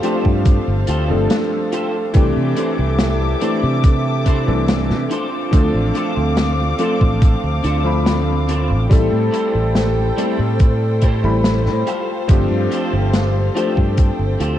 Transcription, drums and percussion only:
0.03 closed hi-hat
0.25 kick
0.45 kick, closed hi-hat
0.87 closed hi-hat
1.30 snare, closed hi-hat
1.72 closed hi-hat
2.14 kick, closed hi-hat
2.57 closed hi-hat
2.99 snare, closed hi-hat
3.41 closed hi-hat
3.84 kick, closed hi-hat
4.26 kick, closed hi-hat
4.68 snare, closed hi-hat
4.90 snare
5.11 closed hi-hat
5.53 kick, closed hi-hat
5.95 closed hi-hat
6.37 snare, closed hi-hat
6.79 closed hi-hat
7.01 kick
7.22 kick, closed hi-hat
7.64 closed hi-hat
8.06 snare, closed hi-hat
8.49 closed hi-hat
8.91 kick, closed hi-hat
9.34 closed hi-hat
9.75 snare, closed hi-hat
10.18 closed hi-hat
10.60 kick, closed hi-hat
11.02 kick, closed hi-hat
11.44 snare, closed hi-hat
11.66 snare
11.87 closed hi-hat
12.29 kick, closed hi-hat
12.72 closed hi-hat
13.14 snare, closed hi-hat
13.57 closed hi-hat
13.77 kick
13.97 kick, closed hi-hat
14.40 closed hi-hat

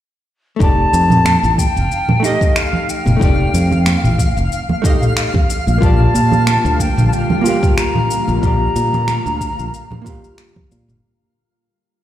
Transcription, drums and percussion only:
0.60 kick, shaker
0.94 shaker
1.10 mid tom, low conga, shaker
1.25 finger snap, high conga, shaker
1.44 shaker
1.58 kick, shaker
1.77 shaker
1.92 shaker
2.08 mid tom, high conga, low conga
2.24 shaker
2.41 kick, shaker
2.56 finger snap, shaker
2.73 low conga
2.89 shaker
3.06 mid tom, high conga, shaker
3.21 kick, shaker
3.54 shaker
3.72 low conga, shaker
3.86 finger snap, high conga, shaker
4.04 mid tom, shaker
4.19 kick, shaker
4.37 shaker
4.52 shaker
4.69 high conga, low conga
4.84 kick, shaker
5.02 mid tom, shaker
5.17 finger snap, shaker
5.34 kick, low conga
5.50 shaker
5.67 high conga, shaker
5.82 kick, shaker
6.00 mid tom
6.15 shaker
6.32 low conga, shaker
6.47 finger snap, high conga, shaker
6.65 shaker
6.80 kick, shaker
6.97 mid tom, shaker
7.13 shaker
7.30 high conga, low conga
7.46 shaker
7.63 kick, shaker
7.78 finger snap, shaker
7.95 mid tom, low conga
8.11 shaker
8.28 high conga, shaker
8.43 kick, shaker
8.76 shaker
8.93 mid tom, low conga, shaker
9.08 finger snap, high conga, shaker
9.26 shaker
9.41 kick, shaker
9.59 shaker
9.74 shaker
9.91 mid tom, high conga, low conga
10.06 kick, shaker
10.24 shaker
10.38 finger snap, shaker
10.56 kick, low conga
10.72 shaker
10.88 mid tom, high conga, shaker

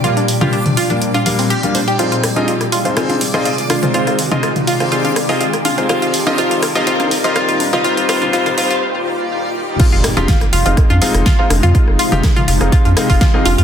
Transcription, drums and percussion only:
0.04 closed hi-hat
0.17 closed hi-hat
0.28 open hi-hat
0.41 closed hi-hat, mid tom, high conga
0.53 closed hi-hat
0.66 closed hi-hat, mid tom
0.77 open hi-hat
0.90 closed hi-hat
1.02 closed hi-hat
1.14 closed hi-hat, high conga
1.26 open hi-hat
1.39 open hi-hat
1.50 closed hi-hat
1.63 closed hi-hat
1.75 open hi-hat, high conga
1.88 closed hi-hat
1.99 closed hi-hat
2.12 closed hi-hat
2.23 cross-stick, open hi-hat
2.36 closed hi-hat, high conga
2.48 closed hi-hat
2.61 cross-stick, closed hi-hat
2.72 open hi-hat
2.85 closed hi-hat
2.97 cross-stick, closed hi-hat
3.10 closed hi-hat, high conga
3.21 open hi-hat
3.34 cross-stick, closed hi-hat
3.45 closed hi-hat
3.58 closed hi-hat
3.70 cross-stick, open hi-hat, high conga
3.83 closed hi-hat, mid tom
3.94 closed hi-hat
4.07 cross-stick, closed hi-hat
4.19 open hi-hat
4.32 closed hi-hat, mid tom, high conga
4.43 cross-stick, closed hi-hat
4.56 closed hi-hat, mid tom
4.67 open hi-hat
4.80 cross-stick, closed hi-hat
4.92 closed hi-hat
5.05 closed hi-hat, high conga
5.16 cross-stick, open hi-hat
5.29 open hi-hat
5.41 closed hi-hat
5.53 cross-stick, closed hi-hat
5.65 open hi-hat, high conga
5.78 closed hi-hat
5.89 cross-stick, closed hi-hat
6.02 closed hi-hat
6.14 open hi-hat
6.27 cross-stick, closed hi-hat, high conga
6.38 closed hi-hat
6.51 closed hi-hat
6.63 cross-stick, open hi-hat
6.75 closed hi-hat
6.87 closed hi-hat
7.00 cross-stick, closed hi-hat, high conga
7.11 open hi-hat
7.24 closed hi-hat
7.36 cross-stick, closed hi-hat
7.49 closed hi-hat
7.60 open hi-hat, high conga
7.73 cross-stick, closed hi-hat, mid tom
7.84 closed hi-hat
7.97 closed hi-hat
8.09 cross-stick, open hi-hat
8.22 closed hi-hat, mid tom, high conga
8.33 closed hi-hat
8.46 cross-stick, closed hi-hat, mid tom
8.58 open hi-hat
8.71 closed hi-hat
9.80 kick, closed hi-hat, crash
10.04 cross-stick, open hi-hat
10.17 closed hi-hat, high conga
10.28 kick, snare, closed hi-hat
10.41 cross-stick, closed hi-hat
10.53 open hi-hat
10.66 closed hi-hat
10.77 kick, cross-stick, closed hi-hat
10.90 closed hi-hat, high conga
11.02 open hi-hat
11.14 cross-stick, closed hi-hat
11.26 kick, snare, closed hi-hat
11.50 cross-stick, open hi-hat, high conga
11.63 closed hi-hat, mid tom
11.75 kick, closed hi-hat
11.88 cross-stick
11.99 open hi-hat
12.12 closed hi-hat, mid tom, high conga
12.23 kick, cross-stick, snare, closed hi-hat
12.36 closed hi-hat, mid tom
12.48 open hi-hat
12.61 cross-stick, closed hi-hat
12.72 kick, closed hi-hat
12.85 closed hi-hat, high conga
12.97 cross-stick, open hi-hat
13.10 kick, open hi-hat
13.21 kick, snare, closed hi-hat
13.34 cross-stick
13.46 open hi-hat, high conga
13.58 closed hi-hat

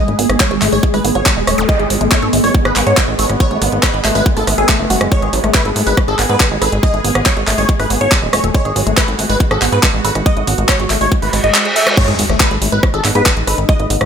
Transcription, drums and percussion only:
0.08 closed hi-hat
0.19 open hi-hat
0.30 cross-stick, closed hi-hat
0.40 kick, clap, closed hi-hat
0.51 closed hi-hat
0.62 clap, open hi-hat
0.72 open hi-hat
0.83 kick, closed hi-hat
0.94 cross-stick, open hi-hat
1.05 open hi-hat
1.15 closed hi-hat
1.26 kick, clap, closed hi-hat
1.47 cross-stick, open hi-hat
1.58 closed hi-hat
1.69 kick, closed hi-hat
1.80 closed hi-hat
1.90 open hi-hat
2.01 closed hi-hat
2.12 kick, cross-stick, clap, closed hi-hat
2.22 closed hi-hat
2.33 open hi-hat
2.44 open hi-hat
2.54 kick, closed hi-hat
2.65 cross-stick, closed hi-hat
2.76 clap, open hi-hat
2.87 closed hi-hat
2.97 kick, clap, closed hi-hat
3.19 open hi-hat
3.30 cross-stick, closed hi-hat
3.40 kick, closed hi-hat
3.51 closed hi-hat
3.62 open hi-hat
3.72 closed hi-hat
3.83 kick, cross-stick, clap, closed hi-hat
3.94 closed hi-hat
4.04 clap, open hi-hat
4.15 open hi-hat
4.26 kick, closed hi-hat
4.37 open hi-hat
4.47 cross-stick, open hi-hat
4.58 closed hi-hat
4.69 kick, clap, closed hi-hat
4.90 open hi-hat
5.01 cross-stick, closed hi-hat
5.12 kick, closed hi-hat
5.22 closed hi-hat
5.33 open hi-hat
5.44 cross-stick, closed hi-hat
5.54 kick, clap, closed hi-hat
5.65 closed hi-hat
5.76 open hi-hat
5.87 open hi-hat
5.97 kick, cross-stick, closed hi-hat
6.08 closed hi-hat
6.19 clap, open hi-hat
6.30 closed hi-hat
6.40 kick, clap, closed hi-hat
6.62 cross-stick, open hi-hat
6.72 closed hi-hat
6.83 kick, closed hi-hat
6.94 closed hi-hat
7.04 open hi-hat
7.15 cross-stick, closed hi-hat
7.26 kick, clap, closed hi-hat
7.37 closed hi-hat
7.47 clap, open hi-hat
7.58 open hi-hat
7.69 kick, closed hi-hat
7.80 cross-stick, open hi-hat
7.90 open hi-hat
8.01 closed hi-hat
8.12 kick, clap, closed hi-hat
8.33 cross-stick, open hi-hat
8.44 closed hi-hat
8.55 kick, closed hi-hat
8.65 closed hi-hat
8.76 open hi-hat
8.87 closed hi-hat
8.97 kick, cross-stick, clap, closed hi-hat
9.08 closed hi-hat
9.19 open hi-hat
9.30 open hi-hat
9.40 kick, closed hi-hat
9.51 cross-stick, closed hi-hat
9.62 clap, open hi-hat
9.72 closed hi-hat
9.83 kick, clap, closed hi-hat
10.05 open hi-hat
10.15 cross-stick, closed hi-hat
10.26 kick, closed hi-hat
10.37 closed hi-hat
10.47 open hi-hat
10.58 closed hi-hat
10.69 kick, cross-stick, clap, closed hi-hat
10.80 closed hi-hat
10.90 clap, open hi-hat
11.01 open hi-hat
11.12 kick, closed hi-hat
11.22 open hi-hat
11.33 cross-stick, open hi-hat
11.44 closed hi-hat
11.54 clap, closed hi-hat
11.65 closed hi-hat
11.76 open hi-hat
11.87 cross-stick, closed hi-hat
11.97 kick, closed hi-hat, crash
12.08 closed hi-hat
12.19 open hi-hat
12.30 cross-stick, closed hi-hat
12.40 kick, clap, closed hi-hat
12.51 closed hi-hat
12.62 open hi-hat
12.72 closed hi-hat
12.83 kick, cross-stick, closed hi-hat
12.94 closed hi-hat
13.05 clap, open hi-hat
13.15 closed hi-hat
13.26 kick, clap, closed hi-hat
13.37 closed hi-hat
13.47 cross-stick, open hi-hat
13.58 closed hi-hat
13.69 kick, closed hi-hat
13.80 closed hi-hat
13.90 open hi-hat
14.01 cross-stick, closed hi-hat

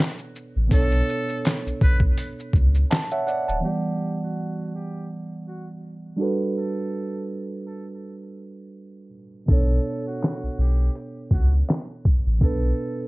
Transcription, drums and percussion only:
0.00 snare, clap
0.18 shaker
0.36 shaker
0.71 kick, closed hi-hat, shaker
0.92 shaker
1.09 shaker
1.29 shaker
1.45 snare, clap, closed hi-hat, shaker
1.67 shaker
1.81 kick, shaker
2.00 kick
2.17 closed hi-hat, shaker
2.39 shaker
2.53 kick, shaker
2.75 shaker
2.91 snare, clap, closed hi-hat, shaker
3.11 shaker
3.28 shaker
3.49 shaker
9.48 kick, closed hi-hat
10.22 snare, clap, closed hi-hat
10.95 closed hi-hat
11.31 kick
11.69 snare, clap, closed hi-hat
12.05 kick
12.41 kick, closed hi-hat

